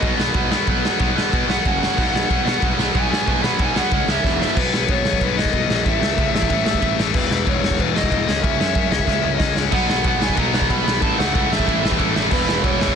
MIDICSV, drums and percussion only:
0, 0, Header, 1, 2, 480
1, 0, Start_track
1, 0, Tempo, 323102
1, 1007, Time_signature, 4, 2, 24, 8
1, 19240, End_track
2, 0, Start_track
2, 0, Title_t, "Drums"
2, 36, Note_on_c, 9, 36, 127
2, 37, Note_on_c, 9, 51, 74
2, 185, Note_off_c, 9, 36, 0
2, 185, Note_off_c, 9, 51, 0
2, 292, Note_on_c, 9, 38, 115
2, 440, Note_off_c, 9, 38, 0
2, 506, Note_on_c, 9, 51, 78
2, 515, Note_on_c, 9, 36, 120
2, 655, Note_off_c, 9, 51, 0
2, 663, Note_off_c, 9, 36, 0
2, 769, Note_on_c, 9, 38, 112
2, 917, Note_off_c, 9, 38, 0
2, 996, Note_on_c, 9, 51, 74
2, 1001, Note_on_c, 9, 36, 109
2, 1144, Note_off_c, 9, 51, 0
2, 1150, Note_off_c, 9, 36, 0
2, 1265, Note_on_c, 9, 38, 115
2, 1414, Note_off_c, 9, 38, 0
2, 1475, Note_on_c, 9, 51, 85
2, 1487, Note_on_c, 9, 36, 114
2, 1624, Note_off_c, 9, 51, 0
2, 1636, Note_off_c, 9, 36, 0
2, 1756, Note_on_c, 9, 38, 124
2, 1904, Note_off_c, 9, 38, 0
2, 1977, Note_on_c, 9, 36, 127
2, 1983, Note_on_c, 9, 51, 85
2, 2125, Note_off_c, 9, 36, 0
2, 2132, Note_off_c, 9, 51, 0
2, 2226, Note_on_c, 9, 38, 100
2, 2374, Note_off_c, 9, 38, 0
2, 2459, Note_on_c, 9, 36, 123
2, 2459, Note_on_c, 9, 51, 81
2, 2607, Note_off_c, 9, 36, 0
2, 2607, Note_off_c, 9, 51, 0
2, 2721, Note_on_c, 9, 38, 117
2, 2870, Note_off_c, 9, 38, 0
2, 2942, Note_on_c, 9, 36, 105
2, 2952, Note_on_c, 9, 49, 99
2, 3091, Note_off_c, 9, 36, 0
2, 3101, Note_off_c, 9, 49, 0
2, 3208, Note_on_c, 9, 38, 122
2, 3356, Note_off_c, 9, 38, 0
2, 3422, Note_on_c, 9, 36, 115
2, 3424, Note_on_c, 9, 51, 81
2, 3570, Note_off_c, 9, 36, 0
2, 3573, Note_off_c, 9, 51, 0
2, 3677, Note_on_c, 9, 38, 127
2, 3826, Note_off_c, 9, 38, 0
2, 3894, Note_on_c, 9, 51, 79
2, 3897, Note_on_c, 9, 36, 123
2, 4043, Note_off_c, 9, 51, 0
2, 4046, Note_off_c, 9, 36, 0
2, 4149, Note_on_c, 9, 38, 107
2, 4297, Note_off_c, 9, 38, 0
2, 4378, Note_on_c, 9, 51, 73
2, 4381, Note_on_c, 9, 36, 124
2, 4527, Note_off_c, 9, 51, 0
2, 4530, Note_off_c, 9, 36, 0
2, 4655, Note_on_c, 9, 38, 121
2, 4804, Note_off_c, 9, 38, 0
2, 4863, Note_on_c, 9, 51, 69
2, 4866, Note_on_c, 9, 36, 118
2, 5011, Note_off_c, 9, 51, 0
2, 5014, Note_off_c, 9, 36, 0
2, 5112, Note_on_c, 9, 38, 123
2, 5260, Note_off_c, 9, 38, 0
2, 5334, Note_on_c, 9, 51, 81
2, 5341, Note_on_c, 9, 36, 120
2, 5482, Note_off_c, 9, 51, 0
2, 5489, Note_off_c, 9, 36, 0
2, 5588, Note_on_c, 9, 38, 122
2, 5737, Note_off_c, 9, 38, 0
2, 5813, Note_on_c, 9, 51, 84
2, 5821, Note_on_c, 9, 36, 121
2, 5961, Note_off_c, 9, 51, 0
2, 5969, Note_off_c, 9, 36, 0
2, 6066, Note_on_c, 9, 38, 106
2, 6215, Note_off_c, 9, 38, 0
2, 6302, Note_on_c, 9, 36, 114
2, 6312, Note_on_c, 9, 38, 67
2, 6450, Note_off_c, 9, 36, 0
2, 6461, Note_off_c, 9, 38, 0
2, 6562, Note_on_c, 9, 38, 94
2, 6710, Note_off_c, 9, 38, 0
2, 6781, Note_on_c, 9, 57, 124
2, 6786, Note_on_c, 9, 36, 102
2, 6930, Note_off_c, 9, 57, 0
2, 6934, Note_off_c, 9, 36, 0
2, 7038, Note_on_c, 9, 38, 123
2, 7187, Note_off_c, 9, 38, 0
2, 7254, Note_on_c, 9, 51, 83
2, 7262, Note_on_c, 9, 36, 119
2, 7402, Note_off_c, 9, 51, 0
2, 7411, Note_off_c, 9, 36, 0
2, 7505, Note_on_c, 9, 38, 127
2, 7618, Note_on_c, 9, 36, 90
2, 7653, Note_off_c, 9, 38, 0
2, 7740, Note_off_c, 9, 36, 0
2, 7740, Note_on_c, 9, 36, 108
2, 7740, Note_on_c, 9, 51, 90
2, 7889, Note_off_c, 9, 36, 0
2, 7889, Note_off_c, 9, 51, 0
2, 8007, Note_on_c, 9, 38, 117
2, 8098, Note_on_c, 9, 36, 102
2, 8155, Note_off_c, 9, 38, 0
2, 8211, Note_on_c, 9, 51, 73
2, 8220, Note_off_c, 9, 36, 0
2, 8220, Note_on_c, 9, 36, 96
2, 8359, Note_off_c, 9, 51, 0
2, 8368, Note_off_c, 9, 36, 0
2, 8473, Note_on_c, 9, 38, 116
2, 8622, Note_off_c, 9, 38, 0
2, 8700, Note_on_c, 9, 51, 82
2, 8703, Note_on_c, 9, 36, 103
2, 8849, Note_off_c, 9, 51, 0
2, 8851, Note_off_c, 9, 36, 0
2, 8959, Note_on_c, 9, 38, 117
2, 9107, Note_off_c, 9, 38, 0
2, 9180, Note_on_c, 9, 36, 125
2, 9184, Note_on_c, 9, 51, 86
2, 9328, Note_off_c, 9, 36, 0
2, 9332, Note_off_c, 9, 51, 0
2, 9441, Note_on_c, 9, 38, 127
2, 9543, Note_on_c, 9, 36, 95
2, 9589, Note_off_c, 9, 38, 0
2, 9654, Note_on_c, 9, 51, 97
2, 9658, Note_off_c, 9, 36, 0
2, 9658, Note_on_c, 9, 36, 105
2, 9803, Note_off_c, 9, 51, 0
2, 9806, Note_off_c, 9, 36, 0
2, 9900, Note_on_c, 9, 38, 112
2, 10017, Note_on_c, 9, 36, 95
2, 10049, Note_off_c, 9, 38, 0
2, 10133, Note_on_c, 9, 51, 86
2, 10136, Note_off_c, 9, 36, 0
2, 10136, Note_on_c, 9, 36, 103
2, 10282, Note_off_c, 9, 51, 0
2, 10285, Note_off_c, 9, 36, 0
2, 10393, Note_on_c, 9, 38, 110
2, 10542, Note_off_c, 9, 38, 0
2, 10605, Note_on_c, 9, 49, 119
2, 10613, Note_on_c, 9, 36, 117
2, 10754, Note_off_c, 9, 49, 0
2, 10762, Note_off_c, 9, 36, 0
2, 10862, Note_on_c, 9, 38, 122
2, 11010, Note_off_c, 9, 38, 0
2, 11093, Note_on_c, 9, 36, 118
2, 11094, Note_on_c, 9, 51, 80
2, 11242, Note_off_c, 9, 36, 0
2, 11243, Note_off_c, 9, 51, 0
2, 11354, Note_on_c, 9, 38, 127
2, 11451, Note_on_c, 9, 36, 86
2, 11502, Note_off_c, 9, 38, 0
2, 11572, Note_off_c, 9, 36, 0
2, 11572, Note_on_c, 9, 36, 113
2, 11582, Note_on_c, 9, 51, 90
2, 11720, Note_off_c, 9, 36, 0
2, 11731, Note_off_c, 9, 51, 0
2, 11832, Note_on_c, 9, 38, 113
2, 11931, Note_on_c, 9, 36, 95
2, 11980, Note_off_c, 9, 38, 0
2, 12055, Note_off_c, 9, 36, 0
2, 12055, Note_on_c, 9, 36, 108
2, 12060, Note_on_c, 9, 51, 85
2, 12203, Note_off_c, 9, 36, 0
2, 12209, Note_off_c, 9, 51, 0
2, 12313, Note_on_c, 9, 38, 109
2, 12462, Note_off_c, 9, 38, 0
2, 12534, Note_on_c, 9, 36, 110
2, 12537, Note_on_c, 9, 51, 77
2, 12683, Note_off_c, 9, 36, 0
2, 12685, Note_off_c, 9, 51, 0
2, 12791, Note_on_c, 9, 38, 125
2, 12940, Note_off_c, 9, 38, 0
2, 12997, Note_on_c, 9, 51, 77
2, 13006, Note_on_c, 9, 36, 119
2, 13145, Note_off_c, 9, 51, 0
2, 13154, Note_off_c, 9, 36, 0
2, 13251, Note_on_c, 9, 38, 119
2, 13359, Note_on_c, 9, 36, 87
2, 13400, Note_off_c, 9, 38, 0
2, 13478, Note_off_c, 9, 36, 0
2, 13478, Note_on_c, 9, 36, 105
2, 13486, Note_on_c, 9, 38, 70
2, 13627, Note_off_c, 9, 36, 0
2, 13635, Note_off_c, 9, 38, 0
2, 13962, Note_on_c, 9, 36, 114
2, 13963, Note_on_c, 9, 38, 100
2, 14111, Note_off_c, 9, 36, 0
2, 14111, Note_off_c, 9, 38, 0
2, 14215, Note_on_c, 9, 38, 93
2, 14363, Note_off_c, 9, 38, 0
2, 14440, Note_on_c, 9, 51, 81
2, 14440, Note_on_c, 9, 57, 98
2, 14446, Note_on_c, 9, 36, 108
2, 14588, Note_off_c, 9, 51, 0
2, 14588, Note_off_c, 9, 57, 0
2, 14594, Note_off_c, 9, 36, 0
2, 14699, Note_on_c, 9, 38, 127
2, 14848, Note_off_c, 9, 38, 0
2, 14919, Note_on_c, 9, 51, 91
2, 14924, Note_on_c, 9, 36, 123
2, 15067, Note_off_c, 9, 51, 0
2, 15073, Note_off_c, 9, 36, 0
2, 15181, Note_on_c, 9, 38, 127
2, 15290, Note_on_c, 9, 36, 97
2, 15330, Note_off_c, 9, 38, 0
2, 15406, Note_on_c, 9, 51, 98
2, 15413, Note_off_c, 9, 36, 0
2, 15413, Note_on_c, 9, 36, 104
2, 15555, Note_off_c, 9, 51, 0
2, 15562, Note_off_c, 9, 36, 0
2, 15662, Note_on_c, 9, 38, 115
2, 15770, Note_on_c, 9, 36, 91
2, 15811, Note_off_c, 9, 38, 0
2, 15895, Note_off_c, 9, 36, 0
2, 15895, Note_on_c, 9, 36, 108
2, 15899, Note_on_c, 9, 51, 81
2, 16043, Note_off_c, 9, 36, 0
2, 16047, Note_off_c, 9, 51, 0
2, 16162, Note_on_c, 9, 38, 121
2, 16311, Note_off_c, 9, 38, 0
2, 16369, Note_on_c, 9, 51, 77
2, 16373, Note_on_c, 9, 36, 103
2, 16517, Note_off_c, 9, 51, 0
2, 16522, Note_off_c, 9, 36, 0
2, 16643, Note_on_c, 9, 38, 121
2, 16791, Note_off_c, 9, 38, 0
2, 16863, Note_on_c, 9, 36, 124
2, 16863, Note_on_c, 9, 51, 88
2, 17012, Note_off_c, 9, 36, 0
2, 17012, Note_off_c, 9, 51, 0
2, 17125, Note_on_c, 9, 38, 120
2, 17223, Note_on_c, 9, 36, 96
2, 17274, Note_off_c, 9, 38, 0
2, 17347, Note_off_c, 9, 36, 0
2, 17347, Note_on_c, 9, 36, 101
2, 17358, Note_on_c, 9, 51, 86
2, 17495, Note_off_c, 9, 36, 0
2, 17507, Note_off_c, 9, 51, 0
2, 17610, Note_on_c, 9, 38, 110
2, 17703, Note_on_c, 9, 36, 92
2, 17758, Note_off_c, 9, 38, 0
2, 17817, Note_on_c, 9, 51, 78
2, 17818, Note_off_c, 9, 36, 0
2, 17818, Note_on_c, 9, 36, 104
2, 17965, Note_off_c, 9, 51, 0
2, 17967, Note_off_c, 9, 36, 0
2, 18068, Note_on_c, 9, 38, 121
2, 18217, Note_off_c, 9, 38, 0
2, 18288, Note_on_c, 9, 49, 113
2, 18297, Note_on_c, 9, 36, 122
2, 18437, Note_off_c, 9, 49, 0
2, 18445, Note_off_c, 9, 36, 0
2, 18554, Note_on_c, 9, 38, 127
2, 18702, Note_off_c, 9, 38, 0
2, 18777, Note_on_c, 9, 36, 126
2, 18777, Note_on_c, 9, 51, 95
2, 18925, Note_off_c, 9, 36, 0
2, 18925, Note_off_c, 9, 51, 0
2, 19036, Note_on_c, 9, 38, 117
2, 19136, Note_on_c, 9, 36, 88
2, 19185, Note_off_c, 9, 38, 0
2, 19240, Note_off_c, 9, 36, 0
2, 19240, End_track
0, 0, End_of_file